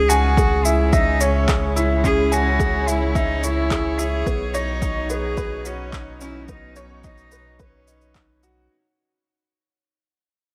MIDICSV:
0, 0, Header, 1, 6, 480
1, 0, Start_track
1, 0, Tempo, 555556
1, 1765, Time_signature, 4, 2, 24, 8
1, 9112, End_track
2, 0, Start_track
2, 0, Title_t, "Upright piano"
2, 0, Program_c, 0, 0
2, 25, Control_c, 0, 64, 127
2, 82, Note_on_c, 0, 80, 101
2, 221, Note_off_c, 0, 80, 0
2, 325, Note_on_c, 0, 68, 96
2, 462, Note_off_c, 0, 68, 0
2, 565, Note_on_c, 0, 76, 73
2, 790, Note_off_c, 0, 76, 0
2, 803, Note_on_c, 0, 76, 105
2, 1032, Note_off_c, 0, 76, 0
2, 1042, Note_on_c, 0, 73, 80
2, 1180, Note_off_c, 0, 73, 0
2, 1279, Note_on_c, 0, 68, 77
2, 1419, Note_off_c, 0, 68, 0
2, 1523, Note_on_c, 0, 64, 100
2, 1661, Note_off_c, 0, 64, 0
2, 1765, Note_on_c, 0, 61, 82
2, 1902, Note_off_c, 0, 61, 0
2, 2003, Note_on_c, 0, 80, 102
2, 2141, Note_off_c, 0, 80, 0
2, 2241, Note_on_c, 0, 68, 105
2, 2380, Note_off_c, 0, 68, 0
2, 2483, Note_on_c, 0, 76, 74
2, 2710, Note_off_c, 0, 76, 0
2, 2723, Note_on_c, 0, 76, 100
2, 2952, Note_off_c, 0, 76, 0
2, 2968, Note_on_c, 0, 73, 80
2, 3104, Note_off_c, 0, 73, 0
2, 3208, Note_on_c, 0, 68, 81
2, 3343, Note_off_c, 0, 68, 0
2, 3446, Note_on_c, 0, 64, 104
2, 3582, Note_off_c, 0, 64, 0
2, 3689, Note_on_c, 0, 59, 85
2, 3696, Control_c, 0, 64, 0
2, 3824, Note_off_c, 0, 59, 0
2, 3866, Control_c, 0, 64, 127
2, 3928, Note_on_c, 0, 73, 113
2, 4063, Note_off_c, 0, 73, 0
2, 4167, Note_on_c, 0, 63, 96
2, 4303, Note_off_c, 0, 63, 0
2, 4405, Note_on_c, 0, 71, 73
2, 4631, Note_off_c, 0, 71, 0
2, 4644, Note_on_c, 0, 71, 100
2, 4873, Note_off_c, 0, 71, 0
2, 4885, Note_on_c, 0, 66, 76
2, 5022, Note_off_c, 0, 66, 0
2, 5126, Note_on_c, 0, 63, 82
2, 5262, Note_off_c, 0, 63, 0
2, 5368, Note_on_c, 0, 61, 109
2, 5503, Note_off_c, 0, 61, 0
2, 5607, Note_on_c, 0, 59, 88
2, 5743, Note_off_c, 0, 59, 0
2, 5845, Note_on_c, 0, 73, 114
2, 5982, Note_off_c, 0, 73, 0
2, 6083, Note_on_c, 0, 63, 105
2, 6221, Note_off_c, 0, 63, 0
2, 6323, Note_on_c, 0, 71, 76
2, 6549, Note_off_c, 0, 71, 0
2, 6562, Note_on_c, 0, 71, 106
2, 6791, Note_off_c, 0, 71, 0
2, 6804, Note_on_c, 0, 63, 80
2, 6941, Note_off_c, 0, 63, 0
2, 7045, Note_on_c, 0, 63, 82
2, 7182, Note_off_c, 0, 63, 0
2, 7285, Note_on_c, 0, 66, 101
2, 7513, Note_off_c, 0, 66, 0
2, 7538, Control_c, 0, 64, 0
2, 9112, End_track
3, 0, Start_track
3, 0, Title_t, "Cello"
3, 0, Program_c, 1, 42
3, 0, Note_on_c, 1, 68, 118
3, 76, Note_on_c, 1, 66, 104
3, 89, Note_off_c, 1, 68, 0
3, 561, Note_on_c, 1, 64, 92
3, 574, Note_off_c, 1, 66, 0
3, 803, Note_on_c, 1, 63, 102
3, 816, Note_off_c, 1, 64, 0
3, 1048, Note_on_c, 1, 61, 91
3, 1061, Note_off_c, 1, 63, 0
3, 1527, Note_off_c, 1, 61, 0
3, 1762, Note_on_c, 1, 68, 112
3, 2010, Note_on_c, 1, 66, 105
3, 2023, Note_off_c, 1, 68, 0
3, 2489, Note_on_c, 1, 64, 101
3, 2502, Note_off_c, 1, 66, 0
3, 2730, Note_on_c, 1, 63, 107
3, 2743, Note_off_c, 1, 64, 0
3, 2966, Note_on_c, 1, 64, 112
3, 2979, Note_off_c, 1, 63, 0
3, 3442, Note_on_c, 1, 68, 115
3, 3455, Note_off_c, 1, 64, 0
3, 3922, Note_on_c, 1, 63, 99
3, 3935, Note_off_c, 1, 68, 0
3, 4403, Note_on_c, 1, 68, 110
3, 4416, Note_off_c, 1, 63, 0
3, 4886, Note_on_c, 1, 61, 100
3, 4899, Note_off_c, 1, 68, 0
3, 5360, Note_off_c, 1, 61, 0
3, 5365, Note_on_c, 1, 64, 98
3, 5588, Note_off_c, 1, 64, 0
3, 5606, Note_on_c, 1, 63, 95
3, 5856, Note_on_c, 1, 61, 86
3, 5869, Note_off_c, 1, 63, 0
3, 6092, Note_on_c, 1, 63, 100
3, 6105, Note_off_c, 1, 61, 0
3, 6568, Note_off_c, 1, 63, 0
3, 6573, Note_on_c, 1, 61, 89
3, 7255, Note_off_c, 1, 61, 0
3, 9112, End_track
4, 0, Start_track
4, 0, Title_t, "String quartet"
4, 0, Program_c, 2, 48
4, 0, Note_on_c, 2, 49, 73
4, 366, Note_on_c, 2, 56, 71
4, 632, Note_on_c, 2, 73, 89
4, 1240, Note_on_c, 2, 64, 84
4, 3682, Note_off_c, 2, 49, 0
4, 3682, Note_off_c, 2, 56, 0
4, 3683, Note_on_c, 2, 47, 83
4, 3685, Note_off_c, 2, 64, 0
4, 3872, Note_on_c, 2, 63, 70
4, 3902, Note_on_c, 2, 54, 74
4, 7524, Note_off_c, 2, 47, 0
4, 7525, Note_off_c, 2, 63, 0
4, 7525, Note_off_c, 2, 73, 0
4, 7527, Note_off_c, 2, 54, 0
4, 9112, End_track
5, 0, Start_track
5, 0, Title_t, "Analog synth bass"
5, 0, Program_c, 3, 38
5, 0, Note_on_c, 3, 37, 94
5, 3661, Note_off_c, 3, 37, 0
5, 3684, Note_on_c, 3, 35, 97
5, 7500, Note_off_c, 3, 35, 0
5, 9112, End_track
6, 0, Start_track
6, 0, Title_t, "Drums"
6, 85, Note_on_c, 9, 82, 65
6, 171, Note_off_c, 9, 82, 0
6, 323, Note_on_c, 9, 36, 104
6, 328, Note_on_c, 9, 82, 44
6, 409, Note_off_c, 9, 36, 0
6, 415, Note_off_c, 9, 82, 0
6, 563, Note_on_c, 9, 82, 63
6, 649, Note_off_c, 9, 82, 0
6, 802, Note_on_c, 9, 36, 115
6, 803, Note_on_c, 9, 82, 42
6, 889, Note_off_c, 9, 36, 0
6, 890, Note_off_c, 9, 82, 0
6, 1043, Note_on_c, 9, 82, 67
6, 1129, Note_off_c, 9, 82, 0
6, 1283, Note_on_c, 9, 36, 109
6, 1284, Note_on_c, 9, 39, 68
6, 1284, Note_on_c, 9, 82, 41
6, 1369, Note_off_c, 9, 36, 0
6, 1371, Note_off_c, 9, 39, 0
6, 1371, Note_off_c, 9, 82, 0
6, 1527, Note_on_c, 9, 82, 61
6, 1613, Note_off_c, 9, 82, 0
6, 1763, Note_on_c, 9, 36, 91
6, 1769, Note_on_c, 9, 82, 44
6, 1849, Note_off_c, 9, 36, 0
6, 1855, Note_off_c, 9, 82, 0
6, 2007, Note_on_c, 9, 82, 62
6, 2093, Note_off_c, 9, 82, 0
6, 2244, Note_on_c, 9, 36, 103
6, 2248, Note_on_c, 9, 82, 43
6, 2330, Note_off_c, 9, 36, 0
6, 2335, Note_off_c, 9, 82, 0
6, 2489, Note_on_c, 9, 82, 62
6, 2575, Note_off_c, 9, 82, 0
6, 2725, Note_on_c, 9, 36, 107
6, 2727, Note_on_c, 9, 82, 42
6, 2811, Note_off_c, 9, 36, 0
6, 2814, Note_off_c, 9, 82, 0
6, 2969, Note_on_c, 9, 82, 65
6, 3055, Note_off_c, 9, 82, 0
6, 3205, Note_on_c, 9, 36, 105
6, 3208, Note_on_c, 9, 39, 67
6, 3208, Note_on_c, 9, 82, 39
6, 3291, Note_off_c, 9, 36, 0
6, 3294, Note_off_c, 9, 39, 0
6, 3294, Note_off_c, 9, 82, 0
6, 3448, Note_on_c, 9, 82, 66
6, 3534, Note_off_c, 9, 82, 0
6, 3685, Note_on_c, 9, 36, 94
6, 3688, Note_on_c, 9, 82, 43
6, 3771, Note_off_c, 9, 36, 0
6, 3775, Note_off_c, 9, 82, 0
6, 3926, Note_on_c, 9, 82, 63
6, 4012, Note_off_c, 9, 82, 0
6, 4165, Note_on_c, 9, 36, 100
6, 4165, Note_on_c, 9, 82, 44
6, 4251, Note_off_c, 9, 36, 0
6, 4251, Note_off_c, 9, 82, 0
6, 4404, Note_on_c, 9, 82, 57
6, 4490, Note_off_c, 9, 82, 0
6, 4644, Note_on_c, 9, 36, 104
6, 4644, Note_on_c, 9, 82, 40
6, 4730, Note_off_c, 9, 36, 0
6, 4730, Note_off_c, 9, 82, 0
6, 4884, Note_on_c, 9, 82, 61
6, 4971, Note_off_c, 9, 82, 0
6, 5124, Note_on_c, 9, 36, 107
6, 5126, Note_on_c, 9, 39, 72
6, 5126, Note_on_c, 9, 82, 37
6, 5210, Note_off_c, 9, 36, 0
6, 5212, Note_off_c, 9, 39, 0
6, 5212, Note_off_c, 9, 82, 0
6, 5363, Note_on_c, 9, 82, 64
6, 5450, Note_off_c, 9, 82, 0
6, 5601, Note_on_c, 9, 82, 44
6, 5604, Note_on_c, 9, 36, 96
6, 5688, Note_off_c, 9, 82, 0
6, 5690, Note_off_c, 9, 36, 0
6, 5839, Note_on_c, 9, 82, 60
6, 5926, Note_off_c, 9, 82, 0
6, 6081, Note_on_c, 9, 82, 41
6, 6084, Note_on_c, 9, 36, 109
6, 6167, Note_off_c, 9, 82, 0
6, 6170, Note_off_c, 9, 36, 0
6, 6201, Note_on_c, 9, 82, 26
6, 6287, Note_off_c, 9, 82, 0
6, 6320, Note_on_c, 9, 82, 61
6, 6406, Note_off_c, 9, 82, 0
6, 6562, Note_on_c, 9, 82, 44
6, 6564, Note_on_c, 9, 36, 108
6, 6648, Note_off_c, 9, 82, 0
6, 6650, Note_off_c, 9, 36, 0
6, 6805, Note_on_c, 9, 82, 65
6, 6891, Note_off_c, 9, 82, 0
6, 6924, Note_on_c, 9, 82, 27
6, 7010, Note_off_c, 9, 82, 0
6, 7043, Note_on_c, 9, 36, 102
6, 7044, Note_on_c, 9, 39, 76
6, 7044, Note_on_c, 9, 82, 42
6, 7130, Note_off_c, 9, 36, 0
6, 7130, Note_off_c, 9, 39, 0
6, 7130, Note_off_c, 9, 82, 0
6, 7285, Note_on_c, 9, 82, 64
6, 7371, Note_off_c, 9, 82, 0
6, 9112, End_track
0, 0, End_of_file